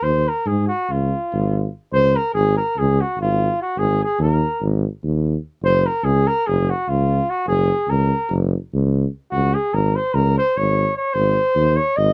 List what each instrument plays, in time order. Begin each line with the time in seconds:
0.03 tuba D#2, flugelhorn C5
0.29 flugelhorn A#4
0.46 tuba G#2, flugelhorn G#4
0.68 flugelhorn F#4
0.90 tuba C#2, flugelhorn F4
1.33 tuba G#1
1.92 tuba C#2, flugelhorn C5
2.16 flugelhorn A#4
2.34 tuba G#1, flugelhorn G#4
2.57 flugelhorn A#4
2.77 tuba C#2, flugelhorn G#4
3.01 flugelhorn F#4
3.18 tuba G#1, flugelhorn F4
3.62 flugelhorn F#4
3.77 tuba G#1, flugelhorn G#4
4.04 flugelhorn G#4
4.19 tuba D#2, flugelhorn A#4
4.61 tuba G#1
5.03 tuba D#2
5.62 tuba F#1, flugelhorn C5
5.86 flugelhorn A#4
6.04 tuba C#2, flugelhorn G#4
6.27 flugelhorn A#4
6.47 tuba F#1, flugelhorn G#4
6.70 flugelhorn F#4
6.88 tuba C#2, flugelhorn F4
7.30 flugelhorn F#4
7.47 tuba F#1, flugelhorn G#4
7.89 tuba C#2, flugelhorn A#4
8.30 tuba F#1
8.73 tuba C#2
9.31 tuba C#2, flugelhorn F#4
9.54 flugelhorn G#4
9.73 tuba G#1, flugelhorn A#4
9.96 flugelhorn C5
10.14 tuba C#2, flugelhorn A#4
10.38 flugelhorn C5
10.56 tuba G#1, flugelhorn C#5
10.97 flugelhorn C#5
11.13 tuba G#1, flugelhorn C5
11.55 tuba D#2
11.76 flugelhorn C#5
11.97 tuba G#1, flugelhorn D#5